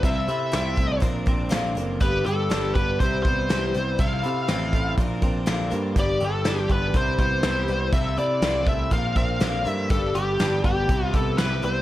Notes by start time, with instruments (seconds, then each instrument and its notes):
0.03 picked electric bass C2, twelve-string acoustic guitar C3 F3 C4 E4 A4, lead electric guitar E5, kick, closed hi-hat
0.28 picked electric bass C3, twelve-string acoustic guitar C4 E4 A4, closed hi-hat
0.52 picked electric bass C2, twelve-string acoustic guitar C3 F3 C4 E4 A4, snare, closed hi-hat
0.76 clean electric guitar A3, twelve-string acoustic guitar C4 E4 A4, kick, closed hi-hat
1.00 picked electric bass A#1, clean electric guitar A#2, twelve-string acoustic guitar F3 C4 D4 A#4, kick, closed hi-hat
1.26 twelve-string acoustic guitar F3 C4 D4 A#4, kick, closed hi-hat
1.49 picked electric bass A#1, twelve-string acoustic guitar A#2 D3 F3 C4 D4 A#4, snare, closed hi-hat
1.75 picked electric bass F#1, twelve-string acoustic guitar F3 C4 D4 A#4, clean electric guitar A#3, closed hi-hat
2.00 picked electric bass G1, twelve-string acoustic guitar G2 D3 G3 B3 D4 G4, lead electric guitar B4, kick, closed hi-hat
2.24 picked electric bass G1, twelve-string acoustic guitar G3 B3 D4 G4, lead electric guitar A4, closed hi-hat
2.50 picked electric bass G1, twelve-string acoustic guitar G2 D3 G3 B3 D4 G4, snare, closed hi-hat
2.75 picked electric bass G1, twelve-string acoustic guitar G3 B3 D4 G4, lead electric guitar B4, kick, closed hi-hat
3.00 picked electric bass C2, clean electric guitar C3, twelve-string acoustic guitar G3 B3 E4 G4, lead electric guitar C5, kick, closed hi-hat
3.23 picked electric bass C2, twelve-string acoustic guitar E4 G4, lead electric guitar C5, kick, closed hi-hat
3.27 twelve-string acoustic guitar B3
3.49 picked electric bass C2, twelve-string acoustic guitar C3 G3 B3 E4 G4, clean electric guitar E3, snare, closed hi-hat
3.74 picked electric bass C2, clean electric guitar G3, twelve-string acoustic guitar B3 E4 G4, closed hi-hat
3.98 picked electric bass C2, twelve-string acoustic guitar C3 F3 C4 E4 A4, lead electric guitar F5, kick, closed hi-hat
4.24 picked electric bass C3, twelve-string acoustic guitar C4 E4 A4, closed hi-hat
4.48 picked electric bass A1, twelve-string acoustic guitar C3 F3 C4 E4 A4, snare, closed hi-hat
4.73 clean electric guitar A3, twelve-string acoustic guitar E4 A4, kick, closed hi-hat
4.77 twelve-string acoustic guitar C4
4.98 picked electric bass A#1, clean electric guitar A#2, twelve-string acoustic guitar F3 C4 D4 A#4, kick, closed hi-hat
5.22 twelve-string acoustic guitar F3 C4 D4 A#4, kick, closed hi-hat
5.46 picked electric bass A#1, twelve-string acoustic guitar A#2 D3 F3 C4 D4 A#4, snare, closed hi-hat
5.70 picked electric bass G2, twelve-string acoustic guitar F3 C4 D4 A#4, clean electric guitar A#3, closed hi-hat
5.96 picked electric bass G1, twelve-string acoustic guitar G2 D3 G3 B3 D4 G4, kick, closed hi-hat
6.00 lead electric guitar D5
6.20 picked electric bass G1, twelve-string acoustic guitar G3 B3 D4 G4, closed hi-hat
6.25 lead electric guitar A4
6.45 picked electric bass G1, twelve-string acoustic guitar G2 D3 G3 B3 D4 G4, snare, closed hi-hat
6.69 picked electric bass G1, twelve-string acoustic guitar B3 D4 G4, lead electric guitar B4, kick, closed hi-hat
6.73 twelve-string acoustic guitar G3
6.94 picked electric bass C2, clean electric guitar C3, twelve-string acoustic guitar G3 B3 E4 G4, lead electric guitar C5, kick, closed hi-hat
7.18 picked electric bass C2, twelve-string acoustic guitar B3 E4 G4, lead electric guitar C5, kick, closed hi-hat
7.43 picked electric bass C2, twelve-string acoustic guitar C3 G3 B3 E4 G4, clean electric guitar E3, snare, closed hi-hat
7.68 picked electric bass C2, clean electric guitar G3, twelve-string acoustic guitar B3 E4 G4, closed hi-hat
7.92 picked electric bass C2, twelve-string acoustic guitar C3 F3 C4 E4 A4, lead electric guitar E5, kick, closed hi-hat
8.17 picked electric bass C3, twelve-string acoustic guitar C4 E4 A4, lead electric guitar D5, closed hi-hat
8.42 picked electric bass C2, twelve-string acoustic guitar C3 F3 C4 E4 A4, snare, closed hi-hat
8.66 clean electric guitar A3, twelve-string acoustic guitar C4 E4 A4, lead electric guitar E5, kick, closed hi-hat
8.91 picked electric bass A#1, clean electric guitar A#2, twelve-string acoustic guitar F3 C4 D4 A#4, lead electric guitar F5, kick, closed hi-hat
9.16 twelve-string acoustic guitar F3 C4 D4 A#4, lead electric guitar F5, kick, closed hi-hat
9.40 picked electric bass A#1, twelve-string acoustic guitar A#2 D3 F3 C4 D4 A#4, snare, closed hi-hat
9.65 picked electric bass G2, twelve-string acoustic guitar F3 C4 D4 A#4, clean electric guitar A#3, lead electric guitar E5, closed hi-hat
9.90 picked electric bass G1, twelve-string acoustic guitar G2 D3 G3 B3 D4 G4, lead electric guitar A4, kick, closed hi-hat
10.14 picked electric bass G1, twelve-string acoustic guitar G3 B3 D4 G4, lead electric guitar G4, closed hi-hat
10.39 picked electric bass G1, twelve-string acoustic guitar G2 D3 G3 B3 D4 G4, snare, closed hi-hat
10.64 picked electric bass G1, twelve-string acoustic guitar G3 B3 D4 G4, lead electric guitar G4, kick, closed hi-hat
10.89 picked electric bass C2, clean electric guitar C3, twelve-string acoustic guitar G3 B3 E4 G4, kick, closed hi-hat
11.13 picked electric bass C2, twelve-string acoustic guitar B3 E4 G4, lead electric guitar A4, kick, closed hi-hat
11.38 picked electric bass C2, twelve-string acoustic guitar C3 G3 B3 E4 G4, clean electric guitar E3, lead electric guitar B4, snare, closed hi-hat
11.62 picked electric bass C2, clean electric guitar G3, twelve-string acoustic guitar B3 E4 G4, lead electric guitar C5, closed hi-hat